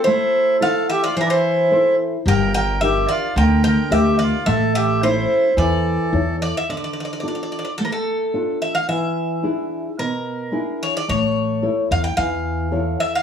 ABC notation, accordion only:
X:1
M:4/4
L:1/16
Q:1/4=109
K:Aphr
V:1 name="Accordion"
E4 A2 G F E/2 D/2 E4- E z2 | B2 B2 G2 F2 B2 B2 G2 F2 | A2 G2 E4 A6 z2 | [K:Dm] z16 |
z16 | z16 |]